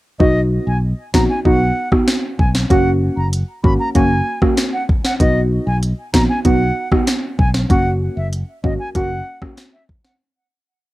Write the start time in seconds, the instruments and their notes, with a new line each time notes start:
0.20 fingered electric bass B1, synth stab B3 D#4 F#4, flute D#5, kick
0.67 fingered electric bass B1, flute G#5
1.14 fingered electric bass A#1, synth stab B3 D#4 F#4, flute A#5, kick, snare
1.30 flute G#5
1.45 fingered electric bass B1, synth stab B3 D#4 F#4, flute F#5, kick
1.92 synth stab B3 D#4 F#4, kick, cross-stick
2.08 snare
2.39 fingered electric bass B1, flute G#5, kick
2.55 snare
2.70 fingered electric bass F#1, synth stab A#3 C#4 F#4, flute F#5, kick, closed hi-hat
3.17 fingered electric bass F#1, flute A#5
3.33 closed hi-hat
3.64 fingered electric bass G#1, synth stab A#3 C#4 F#4, flute B5, kick
3.80 flute A#5
3.95 fingered electric bass F#1, synth stab A#3 C#4 F#4, flute G#5, kick, closed hi-hat
4.42 synth stab A#3 C#4 F#4, kick, cross-stick
4.57 snare, closed hi-hat
4.73 flute F#5
4.89 kick
5.04 flute F#5, snare
5.20 fingered electric bass B1, synth stab B3 D#4 F#4, flute D#5, kick, closed hi-hat
5.67 fingered electric bass B1, flute G#5
5.83 closed hi-hat
6.13 fingered electric bass A#1, synth stab B3 D#4 F#4, flute A#5, kick, snare
6.29 flute G#5
6.45 fingered electric bass B1, synth stab B3 D#4 F#4, flute F#5, kick, closed hi-hat
6.91 synth stab B3 D#4 F#4, kick, cross-stick
7.07 snare, closed hi-hat
7.39 fingered electric bass B1, flute G#5, kick
7.54 snare
7.70 fingered electric bass F#1, synth stab A#3 C#4 F#4, flute F#5, kick, closed hi-hat
8.17 fingered electric bass F#1, flute E5
8.33 closed hi-hat
8.63 fingered electric bass G#1, synth stab A#3 C#4 F#4, flute D#5, kick
8.79 flute G#5
8.95 fingered electric bass F#1, synth stab A#3 C#4 F#4, flute F#5, kick, closed hi-hat
9.41 synth stab A#3 C#4 F#4, kick, cross-stick
9.57 snare, closed hi-hat
9.73 flute E5
9.89 kick
10.05 flute F#5, snare